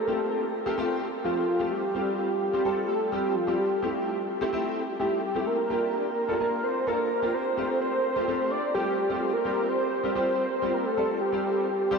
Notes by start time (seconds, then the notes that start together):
Already playing: A4
0.07 A3 C4 F4 G4
0.66 A3 C4 F4 G4
0.78 A3 C4 F4 G4
1.24 A3 C4 F4 G4
1.48 F4
1.59 A3 C4 F4 G4
1.72 G4
1.95 G3 C4 F4 G4
2.18 G4
2.53 G3 C4 F4 G4
2.65 G3 C4 F4 A4
2.88 A4
3.12 G3 C4 F4 G4
3.35 F4
3.47 G3 C4 F4 G4
3.59 G4
3.82 A3 C4 E4 G4
4.41 A3 C4 E4 G4
4.53 A3 C4 E4 G4
4.99 A3 C4 E4 G4
5.23 G4
5.35 A3 C4 E4 G4
5.47 A#4
5.70 A#3 D4 F4 G4
5.94 A#4
6.28 A#3 D4 F4 A4
6.40 A#3 D4 F4 A#4
6.64 C5
6.87 A#3 D4 F4 A4 A#4
7.11 A#4
7.22 A#3 D4 F4 G4
7.34 C5
7.57 A3 C4 F4 G4
7.81 C5
8.16 A3 C4 F4 G4
8.28 A3 C4 F4 G4
8.51 D5
8.75 A3 C4 F4 G4
9.10 A3 C4 F4 G4
9.21 G4
9.33 A#4
9.45 G3 C4 F4 G4
9.69 C5
10.04 G3 C4 F4 G4
10.15 G3 C4 F4 G4 C5
10.62 G3 C4 F4 G4
10.74 A#4
10.86 A4
10.97 G3 C4 F4 A4
11.21 G4
11.32 G3 C4 F4 G4
11.91 G3 C4 F4 G4